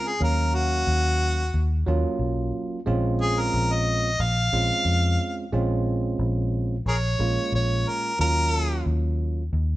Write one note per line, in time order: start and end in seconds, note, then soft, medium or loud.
0.00 0.12 G#3 medium
0.00 0.12 C4 medium
0.00 0.12 C#4 medium
0.00 0.12 F4 medium
0.08 0.21 G#4 loud
0.20 0.83 D#2 medium
0.20 1.42 F#3 medium
0.20 1.42 A#3 medium
0.20 1.42 C#4 medium
0.20 0.56 A#4 medium
0.20 1.43 F5 medium
0.55 1.83 F#4 loud
0.87 1.49 D#2 medium
1.54 1.85 D#2 medium
1.87 2.03 D#2 medium
1.87 2.78 F#3 medium
1.87 2.79 A#3 medium
1.87 2.79 C#4 medium
1.87 2.79 F4 medium
2.19 2.50 B1 medium
2.86 3.49 A#1 medium
2.86 4.08 G#3 medium
2.86 4.09 C4 medium
2.86 4.09 C#4 medium
2.86 4.09 F4 loud
3.22 3.42 G#4 medium
3.40 3.74 A#4 medium
3.54 4.16 A#1 medium
3.73 4.23 D#5 loud
4.20 4.51 A#1 loud
4.20 5.50 F5 loud
4.53 4.70 A#1 medium
4.53 5.44 G#3 medium
4.53 5.45 C4 medium
4.53 5.45 C#4 medium
4.53 5.45 F4 medium
4.85 5.17 F2 loud
5.52 6.16 A#1 medium
5.52 6.75 G#3 medium
5.52 6.75 C4 medium
5.52 6.75 C#4 medium
5.52 6.76 F4 medium
6.19 6.82 A#1 medium
6.86 7.17 A#1 medium
6.86 6.95 G#4 medium
6.86 6.97 A#4 medium
6.86 7.52 C#5 medium
7.19 7.36 A#1 medium
7.19 8.11 G#3 medium
7.19 8.11 A#3 medium
7.19 8.11 C#4 medium
7.19 8.12 F4 medium
7.52 7.84 A#1 medium
7.52 7.90 C#5 medium
7.89 8.20 A#4 medium
8.19 8.82 D#2 medium
8.19 9.41 F#3 medium
8.19 9.42 A#3 medium
8.19 9.42 C#4 medium
8.19 9.42 F4 medium
8.19 8.85 A#4 loud
8.86 9.49 D#2 medium
9.53 9.77 D#2 loud